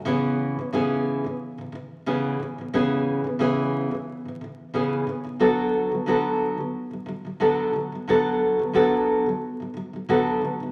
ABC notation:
X:1
M:4/4
L:1/16
Q:"Swing 16ths" 1/4=90
K:C#phr
V:1 name="Nylon-string guitar" clef=bass
[C,E,B,CG]3 [C,E,] [C,E,B,CG]3 [C,E,]2 [C,E,] [C,E,]2 [C,E,B,CG]2 [C,E,] [C,E,] | [C,E,B,CG]3 [C,E,] [C,E,B,CG]3 [C,E,]2 [C,E,] [C,E,]2 [C,E,B,CG]2 [C,E,] [C,E,] | [D,F,B,FA]3 [D,F,] [D,F,B,FA]3 [D,F,]2 [D,F,] [D,F,] [D,F,] [D,F,B,FA]2 [D,F,] [D,F,] | [D,F,B,FA]3 [D,F,] [D,F,B,FA]3 [D,F,]2 [D,F,] [D,F,] [D,F,] [D,F,B,FA]2 [D,F,] [D,F,] |]